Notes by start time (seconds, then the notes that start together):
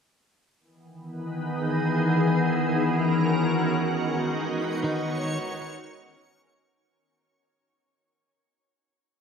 0.60 D#3 E3 B3
0.95 B3 D#4
1.27 G#4 B4
2.68 A#4
2.83 C#4 F#4
3.68 D#4 C#5 C#6
3.89 G#3
4.23 B3 B4
4.83 D#3 D#4
5.91 C#4 A#4